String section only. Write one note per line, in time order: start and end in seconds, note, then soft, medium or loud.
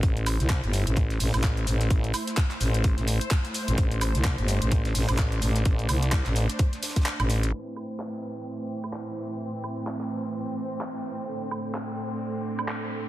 0.03 7.49 A3 medium
0.03 3.74 E4 medium
0.03 7.49 C5 medium
3.78 7.49 D4 medium
7.53 13.09 A2 medium
7.53 11.24 E3 medium
7.53 13.09 C4 medium
11.28 13.09 D3 medium